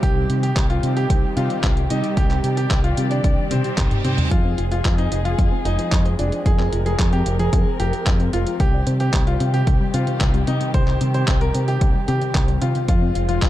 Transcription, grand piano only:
0.03 G4
0.43 G4
0.70 F4
0.97 G4
1.37 F4
1.90 D#4
2.17 G4
2.57 G4
2.84 F4
3.11 D4
3.51 C4
4.05 C4
4.31 F4
4.72 F4
4.98 D#4
5.25 F4
5.65 D#4
6.19 D4
6.46 G#4
6.86 G#4
7.13 G4
7.40 G#4
7.80 G4
8.33 F4
8.60 G4
9.00 G4
9.27 F4
9.54 G4
9.94 F4
10.48 D#4
10.74 C5
11.15 C5
11.41 A#4
11.68 G4
12.08 G4
12.62 F4
12.88 F4
13.29 F4

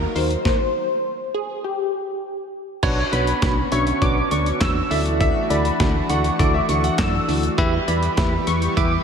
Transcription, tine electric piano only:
0.15 D#4 F#4 A#4
2.83 D4 F#4 B4 C#5
3.13 D4 F#4 B4 C#5
3.42 D4 F#4 B4 C#5
3.72 D4 F#4 B4 E5
4.02 D4 F#4 B4 C#5
4.31 D4 F#4 B4 D5
4.61 D4 F#4 B4 C#5
4.91 E4 F#4 A4 D5
5.50 E4 F#4 A4 D5
5.80 E4 F#4 A4 D5
6.10 E4 F#4 A4 D5
6.39 E4 F#4 A4 D5
6.69 E4 F#4 A4 D5
6.99 E4 F#4 A4 D5
7.28 E4 F#4 A4 D5
7.58 E4 G4 B4 E5
7.88 E4 G4 B4 D5
8.18 E4 G4 B4 E5
8.47 E4 G4 B4 E5
8.77 E4 G4 B4 E5

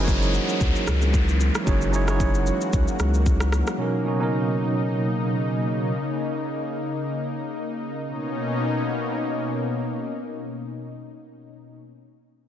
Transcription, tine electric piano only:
Already playing: F#3 C#4 D#4 E4 G#4 A#4 C#5
0.00 C5
0.05 C#5
1.65 F#3 C#4 D#4 E4 G#4 C#5
1.92 F#3 C#4 D#4 E4 G#4 C#5
2.06 F#3 C#4 D#4 E4 G#4
2.10 C#5
3.78 B2 F#3 C#4 D#4 A#4
4.04 B2 F#3 C#4 D#4
4.08 F#4
4.19 B2 F#3 C#4 D#4
4.23 A#4

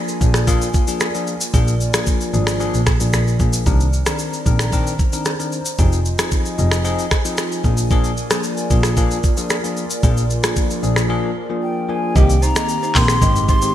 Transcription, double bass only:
0.21 A#1
1.54 A#1
2.33 G#1
2.74 A#1
3.01 A#1
3.13 A#1
3.40 A#1
3.66 C2
4.46 A#1
5.79 F1
6.59 F1
7.64 A#1
8.70 A#1
10.03 A#1
10.83 A#1
12.16 C2
12.95 A#1
13.22 G#1

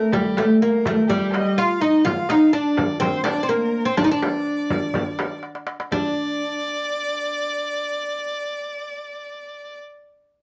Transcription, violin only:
Already playing: A#4
0.12 G4
0.61 A#4
1.08 G4
1.33 D#5
1.58 F5
1.81 D#5
2.04 F5
2.55 D5
3.02 C5
3.26 D5
3.50 A#4
3.87 C5
3.99 D5
4.13 D5
5.92 D5

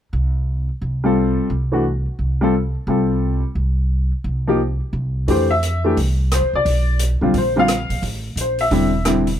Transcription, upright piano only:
1.04 G3 C4 F4 A4
1.72 E3 A3 D4 F#4
2.41 G3 C4 F4 A4
2.88 G3 C4 F4 A4
4.47 F3 A#3 D#4 G4
5.28 E3 A3 D4 G4 C5
5.50 E5
5.84 E3 A3 D4 G4
6.34 C5
6.55 D5
7.21 D3 G3 C4 F4
7.38 C5
7.56 D3 G3 C4 F4 F5
8.41 C5
8.61 E5
8.71 D3 G3 C4 E4
9.05 D3 G3 C4 E4

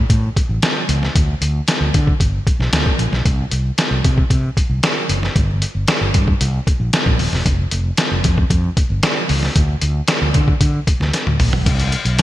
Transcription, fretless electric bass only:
0.10 A2
0.49 A1
0.89 C#2
1.15 D2
1.41 D2
1.81 D2
1.94 D3
2.20 G1
2.60 B1
2.73 D2
2.99 A#1
3.12 B1
3.25 C2
3.52 C2
3.91 C2
4.04 C3
4.30 C3
4.70 C2
5.09 F#1
5.36 G1
5.75 G1
6.01 G1
6.15 G2
6.41 C2
6.80 A#1
7.06 A#1
7.20 D#1
7.32 E1
7.46 F1
7.72 F1
8.11 F1
8.25 F2
8.50 F2
8.90 G1
9.30 C#2
9.56 D2
9.82 D2
10.22 D2
10.35 D3
10.61 D3
11.00 D2
11.27 D2
11.40 A#1
11.53 B1
11.66 C2
12.05 B1

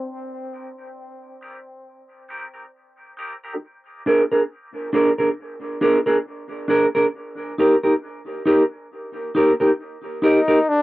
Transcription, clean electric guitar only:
0.53 D#4 G4 A#4
0.78 D#4 G4 A#4
1.41 D#4 G4 A#4
2.29 D#4 G4 A#4
2.54 D#4 G4 A#4
3.17 D#4 G4 A#4
3.43 D#4 G4 A#4
4.06 D4 G#4 A#4
4.32 D4 G#4 A#4
4.93 D4 G#4 A#4
5.18 D4 G#4 A#4
5.81 D4 G#4 A#4
6.06 D4 G#4 A#4
6.68 D4 G#4 A#4
6.95 D4 G#4 A#4
7.58 D#4 G4 A#4
7.83 D#4 G4 A#4
8.46 D#4 G4 A#4
9.35 D#4 G4 A#4
9.60 D#4 G4 A#4
10.22 D#4 G4 A#4
10.48 D#4 G4 A#4

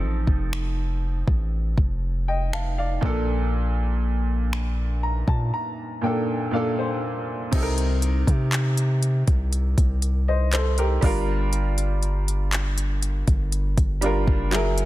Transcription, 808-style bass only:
0.02 A1
0.27 F1
1.27 A1
1.78 F1
3.03 A#1
5.28 A#2
7.52 C2
8.27 C3
9.28 C2
9.78 C2
11.03 G1
13.28 G1
13.77 G1
14.27 F#1

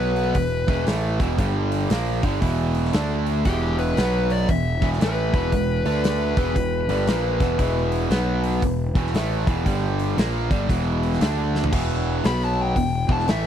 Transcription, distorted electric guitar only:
Already playing: B2 F#3 B3
0.36 E2 B2
0.68 E2 B2 E3
0.86 A2 E3 A3
1.20 E2 B2 E3
1.39 G2 D3 G3
1.91 A#2 F3 A#3
2.23 G2 D3 G3
2.42 E2 B2 E3
2.93 D3 A3 D4
3.46 E2 B2 E3
3.97 B2 F#3 B3
4.49 E2 B2
4.81 E2 B2 E3
5.00 A2 E3 A3
5.34 E2 B2 E3
5.53 E2 B2
5.86 D3 A3 D4
6.37 E2 B2 E3
6.56 E2 B2
6.89 G2 D3 G3
7.08 A#2 F3 A#3
7.41 E2 B2 E3
7.59 E2 B2 E3
8.10 B2 F#3 B3
8.62 E2 B2
8.95 E2 B2 E3
9.14 A2 E3 A3
9.47 E2 B2 E3
9.66 G2 D3 G3
10.17 A#2 F3 A#3
10.51 G2 D3 G3
10.69 E2 B2 E3
11.21 D3 A3 D4
11.73 E2 B2 E3
12.25 B2 F#3 B3
12.77 E2 B2
13.09 E2 B2 E3
13.27 A2 E3 A3

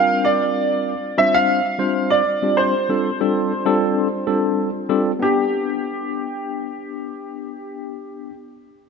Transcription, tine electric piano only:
Already playing: G3 C4 D4 F4 A#4
1.18 G3 C4 D4 F4 C5
1.79 G3 C4 D4 F4 C5
2.42 G3 C4 D4 F4 G4
2.89 G3 C4 D4 F4 A4
3.21 G3 C4 D4 F4 A4
3.66 G3 C4 D4 F4 A4
4.27 G3 C4 D4 F4 A4
4.89 G3 C4 D4 F4 A4
5.20 B3 D4 G4

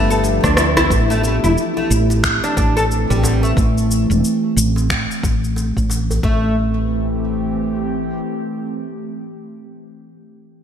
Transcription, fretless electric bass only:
Already playing: G1
0.44 D2
0.90 A1
1.44 E1
1.90 A1
2.57 A1
3.10 A1
3.57 A1
4.10 E1
4.56 A1
5.23 A1
5.77 A1
6.23 A1

